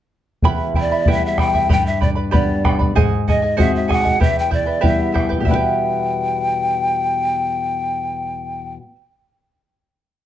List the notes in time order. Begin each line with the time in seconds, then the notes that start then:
0.42 E2 E4 B4 E5 G5 B5, bombo low
0.74 E4 E5 G5 B5, bombo low
0.80 D5
0.92 E4 E5 B5
1.06 G3 B3 E4 B4 E5 G5 B5, bombo low
1.11 E5
1.26 E5
1.38 E4 E5 G5 B5, bombo rim, bombo low
1.54 E4 E5 B5, bombo low
1.69 G2 G4 B4 D5 G5 B5, bombo low
1.86 E5
2.01 B4 D5 G5 B5, bombo low
2.15 B4 D5 B5
2.31 G3 B3 D4 G4 B4 D5 G5 B5, bombo low
2.64 B4 D5 G5 B5, bombo rim, bombo low
2.79 B4 D5 B5, bombo low
2.95 G#2 G#4 C5 D#5 F#5 G#5, bombo low
3.28 G#4 D#5 F#5 G#5, bombo low
3.42 G#4 D#5 G#5
3.57 G#3 C4 F#4 G#4 C5 D#5 E5 F#5 G#5, bombo low
3.75 E5
3.88 G#4 D#5 F#5 G#5, bombo rim, bombo low
4.04 G#4 D#5 G#5, bombo low
4.20 E2 E4 G4 B4 E5 G5, bombo low
4.39 G5
4.50 E4 B4 D5 E5 G5, bombo low
4.66 E4 B4 G5
4.81 G3 B3 E4 G4 B4 E5 G5, bombo low
4.85 E5
5.12 E4 B4 E5 G5, bombo rim, bombo low
5.29 E4 B4 G5, bombo low
5.37 E2 G4
5.42 B2 G3 E5
5.47 B3 E4 G5, bombo low
5.51 E4 B4 G5
5.55 B4